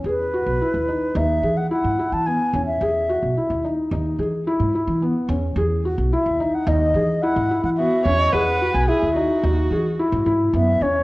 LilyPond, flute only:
\new Staff \with { instrumentName = "Flute" } { \time 5/4 \key e \major \tempo 4 = 109 b'2 e''8. fis''16 fis''8. a''16 gis''8. e''16~ | e''4.~ e''16 r2. r16 | r4 e''8. fis''16 dis''4 fis''8. fis''16 e''8. dis''16 | fis''8. gis''16 e''4 r2 e''8 cis''8 | }